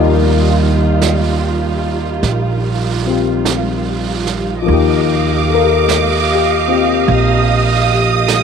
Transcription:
Already playing: upright bass D#2, string section D#3 G3 F4, grand piano F3 A#3 D#4 G4 A#4 D5 D#5 F5
1.02 brush sweep, snare, hi-hat pedal
2.23 upright bass A#1, brush sweep, snare
3.06 grand piano C4 F4 G4
3.45 brush sweep, snare, hi-hat pedal
4.27 snare
4.62 grand piano F3 A#3
4.67 upright bass D#2, grand piano D#4, string section G4 D#5 F5 D6, brush sweep
4.73 grand piano G4
5.50 grand piano A4
5.54 grand piano A#4
5.89 brush sweep, snare, hi-hat pedal
6.35 grand piano G4
6.68 grand piano C4 F4 G4
7.08 upright bass A#1, string section D#6, brush sweep
8.28 brush sweep, snare, hi-hat pedal

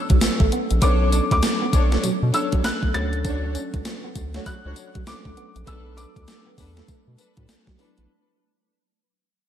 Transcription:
Already playing: tine electric piano F#3 B3 C#4 D4 A4, felt piano E6
0.10 analog synth bass B1, clean electric guitar F#3, kick, closed hi-hat
0.21 analog synth bass A1, muted clean electric guitar stroke, snare, closed hi-hat, tambourine
0.40 analog synth bass A1, clean electric guitar A3, kick
0.52 clean electric guitar B3, closed hi-hat
0.71 analog synth bass A#1, closed hi-hat
0.82 analog synth bass B1, tine electric piano F#3 B3 C#4 D4 A4, clean electric guitar B3, string section D4 A4 C#5, felt piano D6, kick, closed hi-hat, tambourine
1.01 muted clean electric guitar stroke
1.12 clean electric guitar D4, closed hi-hat, tambourine
1.31 analog synth bass D2, felt piano D6, kick, closed hi-hat
1.43 snare, closed hi-hat, tambourine
1.62 clean electric guitar B3
1.73 analog synth bass B1, string section D4 A4 C#5, muted clean electric guitar stroke, kick, closed hi-hat, tambourine
1.92 clean electric guitar A3, snare, closed hi-hat
2.03 analog synth bass B2, clean electric guitar F#3, closed hi-hat, tambourine
2.23 analog synth bass B2
2.34 tine electric piano F#3 B3 C#4 D4 A4, string section D4 A4 C#5, felt piano E6, muted clean electric guitar stroke, closed hi-hat, tambourine
2.52 analog synth bass B1, clean electric guitar F#3, kick, closed hi-hat
2.64 analog synth bass B1, felt piano F#6, muted clean electric guitar stroke, snare, closed hi-hat, tambourine
2.83 analog synth bass B1, clean electric guitar A3, kick
2.94 analog synth bass D2, tine electric piano F#3 A3 C#4 D4 A4, clean electric guitar B3, string section D4 F#4 C#5, felt piano A6, closed hi-hat
3.13 closed hi-hat
3.25 string section D4 F#4 C#5, clean electric guitar D4, kick, closed hi-hat, tambourine
3.44 muted clean electric guitar stroke
3.55 clean electric guitar C#4, closed hi-hat, tambourine
3.74 analog synth bass C#2, kick, closed hi-hat
3.85 snare, closed hi-hat, tambourine
4.04 clean electric guitar B3
4.15 analog synth bass D2, muted clean electric guitar stroke, kick, closed hi-hat, tambourine
4.34 clean electric guitar A3, string section D4 F#4 C#5, snare, closed hi-hat
4.46 analog synth bass C#2, clean electric guitar F#3, felt piano F#6, kick, closed hi-hat, tambourine
4.65 analog synth bass C#2, string section D4 F#4 C#5
4.76 muted clean electric guitar stroke, closed hi-hat, tambourine
4.95 analog synth bass B1, clean electric guitar F#3, kick, closed hi-hat
5.07 analog synth bass C#2, tine electric piano F#3 A3 C#4 D4 A4, felt piano D6, muted clean electric guitar stroke, snare, closed hi-hat, tambourine
5.25 analog synth bass C#2, clean electric guitar A3, kick
5.37 clean electric guitar B3, closed hi-hat
5.56 analog synth bass A#1, closed hi-hat
5.67 analog synth bass B1, tine electric piano F#3 A3 B3 D4 A4, clean electric guitar B3, string section D4 A4 B4, felt piano E6, kick, closed hi-hat, tambourine
5.86 muted clean electric guitar stroke
5.97 clean electric guitar D4, felt piano D6, closed hi-hat, tambourine
6.16 analog synth bass D2, kick, closed hi-hat
6.28 snare, closed hi-hat, tambourine
6.46 clean electric guitar B3
6.58 analog synth bass E2, string section D4 A4 B4, muted clean electric guitar stroke, kick, open hi-hat, tambourine
6.77 clean electric guitar A3, snare, closed hi-hat
6.88 analog synth bass B2, clean electric guitar A3, kick, closed hi-hat, tambourine
7.08 analog synth bass B2
7.18 string section D4 A4 B4, muted clean electric guitar stroke, closed hi-hat, tambourine
7.37 analog synth bass A2, clean electric guitar F#3, kick, closed hi-hat
7.49 analog synth bass B1, muted clean electric guitar stroke, snare, closed hi-hat, tambourine
7.67 analog synth bass B1, clean electric guitar F#3, kick, snare
7.78 tine electric piano F#3 A3 B3 D4 E4, clean electric guitar A3, string section D4 A4 B4, open hi-hat
7.98 analog synth bass A#1, closed hi-hat

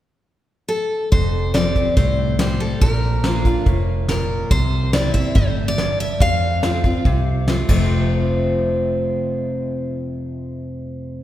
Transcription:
0.68 steel-string acoustic guitar A4
1.12 fingered electric bass F1, steel-string acoustic guitar F2 C5, kick, closed hi-hat
1.54 steel-string acoustic guitar F3 G3 C4 G4 D5, snare, closed hi-hat
1.76 steel-string acoustic guitar C4 G4, kick, closed hi-hat
1.97 fingered electric bass C2, steel-string acoustic guitar A2 C5, kick, closed hi-hat
2.39 steel-string acoustic guitar F3 G3 C4 G4 C5, snare, closed hi-hat
2.60 steel-string acoustic guitar A4
2.81 fingered electric bass A#1, steel-string acoustic guitar A#2 A#4, kick, closed hi-hat
3.24 steel-string acoustic guitar F3 A#3 D4 F4, snare, closed hi-hat
3.45 steel-string acoustic guitar D4 F4, kick, closed hi-hat
3.66 fingered electric bass F1, steel-string acoustic guitar A2, kick, closed hi-hat
4.08 steel-string acoustic guitar A#2 A#4, snare, closed hi-hat
4.51 fingered electric bass C2, steel-string acoustic guitar C3 C5, kick, closed hi-hat
4.93 steel-string acoustic guitar E3 A#3 C4 E4 D5, snare, closed hi-hat
5.14 steel-string acoustic guitar C4 E4 E5, kick, closed hi-hat
5.35 fingered electric bass G1, steel-string acoustic guitar A2 C5, kick, closed hi-hat
5.68 steel-string acoustic guitar D5
5.78 steel-string acoustic guitar G2, snare, closed hi-hat
6.00 steel-string acoustic guitar E5
6.20 steel-string acoustic guitar F2 F5, fingered electric bass F2, kick, closed hi-hat
6.63 steel-string acoustic guitar F3 A3 C4 F4, snare, closed hi-hat
6.84 steel-string acoustic guitar C4 F4, kick, closed hi-hat
7.05 fingered electric bass C2, steel-string acoustic guitar C3, kick, closed hi-hat
7.48 steel-string acoustic guitar F3 A3 C4 F4, snare, closed hi-hat
7.69 fingered electric bass F1, steel-string acoustic guitar F2 C3 F3 A3 C4 F4, kick, crash

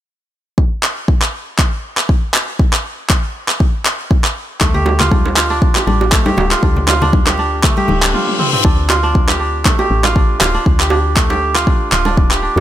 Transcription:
0.58 kick
0.83 clap
1.08 kick
1.22 clap
1.58 kick, clap
1.97 clap
2.09 kick
2.34 clap
2.59 kick
2.73 clap
3.10 kick, clap
3.48 clap
3.60 kick
3.85 clap
4.11 kick
4.24 clap
4.61 fm bass D2, kora A3, kick, clap, high conga
4.74 kora G4, low conga
4.86 high bongo, low bongo
5.00 kora F4, clap, muted conga, low conga
5.11 kora D4, kick, high conga
5.26 low bongo
5.36 kora F4, clap, muted conga
5.50 kora D4
5.62 kick
5.75 kora G4, clap, high bongo, muted conga
5.87 fm bass A1, kora D4, high conga
6.01 high bongo
6.12 kora A3, kick, clap, muted conga
6.26 kora G4, low bongo, high conga
6.37 fm bass D1, high bongo, high conga
6.51 kora F4, clap, muted conga
6.63 fm bass D2, kora D4, kick, high conga
6.76 low conga
6.87 kora F4, clap, high bongo, low bongo
7.02 kora D4, muted conga, low conga
7.13 kick, high conga
7.27 kora G4, clap, low bongo
7.38 kora D4, muted conga
7.63 kora A3, kick, clap, reverse cymbal, low conga
7.77 kora G4, muted conga, high conga
7.88 fm bass D1, high conga, low conga
8.03 kora D4, clap
8.14 kora F4, high tom
8.28 high tom
8.39 kora C4, mid tom
8.53 kora C4, mid tom
8.64 fm bass D2, kora D4, kick
8.90 kora F4, clap, high bongo
9.03 kora D4
9.15 kick
9.28 kora G4, clap, low bongo
9.40 kora D4
9.65 kora A3, kick, clap, low bongo
9.79 kora G4, high bongo
9.90 fm bass A1
10.03 kora F4, clap, high bongo, low bongo
10.15 kora D4, kick
10.40 fm bass D1, kora F4, clap, high bongo, low bongo
10.54 kora D4
10.66 fm bass D2, kick
10.80 kora G4, clap
10.90 kora D4, high bongo
11.16 kora A3, kick, clap
11.30 kora G4, low bongo
11.55 kora F4, clap
11.67 kora D4, kick
11.92 fm bass D1, kora F4, clap
12.05 kora D4, low bongo
12.17 kick
12.31 kora G4, clap
12.42 kora D4
12.56 fm bass F2

